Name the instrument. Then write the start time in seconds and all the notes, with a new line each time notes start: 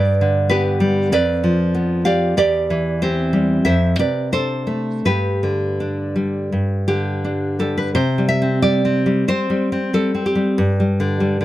nylon-string guitar
Already playing: G2 B4 D5
0.21 D3
0.50 B3 G4 B4
0.80 G3
1.12 F2 B4 D5
1.44 F3
1.75 B3
2.05 G4 D5 F5
2.37 E2 G4 D5
2.70 E3
3.02 C4 G4 C5
3.33 G3
3.65 F2 C5 E5
3.99 C3 B4 D5
4.32 D4 A4 C5
4.67 A3
5.05 G2 G4 B4
5.43 D3
5.80 D4
6.16 G3
6.52 G2
6.88 D3 G4
7.24 D4
7.59 G3 A4
7.78 B4
7.95 C3 C5
8.18 G3
8.29 E5
8.42 C4
8.62 G3 D5
8.85 C4
9.06 G3
9.28 C4 C5
9.50 G3
9.72 C4
9.93 G3 A4
10.15 C4
10.26 G4
10.35 G3
10.58 G2
10.80 G3
11.00 D3
11.20 G3
11.41 D3